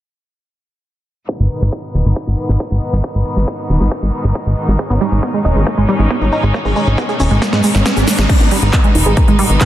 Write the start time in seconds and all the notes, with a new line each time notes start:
1.29 G#2 B2 D#3 B3 D#4, kick
1.40 G#1, closed hi-hat
1.50 open hi-hat
1.62 G#1, closed hi-hat
1.73 kick
1.83 closed hi-hat
1.94 D#1, open hi-hat
2.05 G#1, closed hi-hat
2.16 kick
2.27 G#1, closed hi-hat
2.38 open hi-hat
2.49 G#1, closed hi-hat
2.60 kick
2.71 G#1, closed hi-hat
2.82 open hi-hat
2.93 G#1, closed hi-hat
3.04 kick
3.15 G#1, open hi-hat
3.26 open hi-hat
3.37 G#1, closed hi-hat
3.48 kick
3.59 closed hi-hat
3.70 D#1, open hi-hat
3.80 G#1, closed hi-hat
3.91 kick
4.02 G#1, closed hi-hat
4.13 open hi-hat
4.24 G#1, closed hi-hat
4.35 kick
4.46 G#1, closed hi-hat
4.57 open hi-hat
4.68 G#1, closed hi-hat
4.79 G#3 C#4, kick, riser, shaker
4.90 G#1 B3, closed hi-hat, shaker
5.01 G3, open hi-hat, shaker
5.12 G#1, closed hi-hat, shaker
5.22 B3, kick, closed hi-hat, shaker
5.34 G#3, closed hi-hat, shaker
5.45 D#1 D#4, open hi-hat, shaker
5.56 G#1 G#3, closed hi-hat, shaker
5.66 A#3, kick, closed hi-hat, shaker
5.78 G#1 G#3, closed hi-hat
5.88 G3, open hi-hat, shaker
5.99 G#1, closed hi-hat, shaker
6.10 B3, kick, closed hi-hat, shaker
6.21 G#1 D#4, closed hi-hat, shaker
6.32 D#4, open hi-hat, shaker
6.43 G#1 G#3, closed hi-hat, shaker
6.54 A#3, kick, closed hi-hat, shaker
6.65 G#1 G#3, open hi-hat, shaker
6.76 G#3, open hi-hat, shaker
6.87 G#1, closed hi-hat, shaker
6.98 B3, kick, closed hi-hat, shaker
7.09 G#4, closed hi-hat, shaker
7.20 D#1 C#4, open hi-hat, shaker
7.31 G#1 G#3, closed hi-hat, shaker
7.42 A#3, kick, snare, closed hi-hat, shaker
7.53 G#2 G#3, snare, closed hi-hat
7.64 G#3, open hi-hat, shaker
7.75 G#1, snare, shaker
7.86 B3, kick, snare, closed hi-hat, shaker
7.96 G#1 G#4, closed hi-hat, shaker
8.07 A#3, snare, open hi-hat, shaker
8.18 G#1 G#3, snare, closed hi-hat, shaker
8.29 G#2 B2 D#3 G#3 B3 D#4, kick, closed hi-hat, crash
8.40 G#1 B3, closed hi-hat
8.51 G3, open hi-hat
8.62 G#1, closed hi-hat
8.73 B3, kick, clap, closed hi-hat
8.84 G#3, closed hi-hat
8.95 D#1 D#4, open hi-hat
9.06 G#1 G#3, closed hi-hat
9.17 A#3, kick, closed hi-hat
9.28 G#1 G#3, closed hi-hat
9.39 G3, open hi-hat
9.50 G#1, closed hi-hat
9.61 B3, kick, clap, closed hi-hat